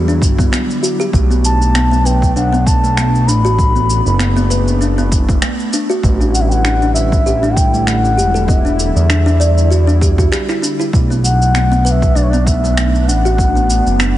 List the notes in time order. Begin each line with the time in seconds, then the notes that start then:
Already playing: E2 D3 F#3 G3 E4
0.08 D4, shaker
0.22 G1, kick, shaker
0.39 B3, kick, shaker
0.52 B3, finger snap, shaker
0.70 shaker
0.83 F#4, shaker
1.00 G4, shaker
1.12 B1 A3 B3 D4, kick, shaker
1.31 B3, shaker
1.45 A5, shaker
1.62 shaker
1.75 B3, finger snap, shaker
1.92 B3, shaker
2.05 B4 G5, shaker
2.22 kick, shaker
2.36 B1 D4 F#5, shaker
2.53 B3, shaker
2.66 A5, kick, shaker
2.84 A3, shaker
2.97 A3, finger snap, shaker
3.15 shaker
3.28 A1 D4 B5, shaker
3.45 F#4, shaker
3.59 A3, kick, shaker
3.75 B3, shaker
3.90 shaker
4.06 F#1, shaker
4.19 B3, finger snap, shaker
4.37 B3, shaker
4.50 B4, shaker
4.68 shaker
4.81 D4, shaker
4.98 B3, shaker
5.12 kick, shaker
5.29 A3, kick, shaker
5.42 A3, finger snap, shaker
5.60 shaker
5.73 D4, shaker
5.90 F#4, shaker
6.03 A1 D3 G3 A3 E4, kick, shaker
6.21 D4, shaker
6.33 F#5, shaker
6.41 E5
6.49 F#5 G5, shaker
6.65 D4, finger snap, shaker
6.82 D4, shaker
6.94 E5, shaker
7.12 kick, shaker
7.26 A1 G4, shaker
7.43 D4, shaker
7.55 G5, kick, shaker
7.74 A3, shaker
7.87 A3 F#5, finger snap, shaker
8.05 shaker
8.17 E1 G4, shaker
8.34 A4, shaker
8.48 B3 E5, kick, shaker
8.65 D4, shaker
8.79 shaker
8.96 E2, shaker
9.10 D4, finger snap, shaker
9.26 D4, shaker
9.40 D5, shaker
9.58 shaker
9.71 F#4, shaker
9.87 D4, shaker
10.01 G4, kick, shaker
10.18 F#4, kick, shaker
10.32 G4, finger snap, shaker
10.49 E4, finger snap, shaker
10.62 D4, shaker
10.80 E4, shaker
10.93 B1 A3 B3 D4 B4, kick, shaker
11.10 B3, shaker
11.24 F#5, shaker
11.42 shaker
11.55 B3, finger snap, shaker
11.72 B3, shaker
11.85 B4 F#5, shaker
11.91 E5
12.02 kick, shaker
12.15 B1 D4 D5, shaker
12.23 C#5
12.30 B3 D5, shaker
12.45 E5, kick, shaker
12.64 A3, shaker
12.77 A3, finger snap, shaker
12.95 shaker
13.07 A1 D4 F#5, shaker
13.25 F#4, shaker
13.38 A3, kick, shaker
13.55 B3, shaker
13.70 shaker
13.86 F#1, shaker
13.99 B3, finger snap, shaker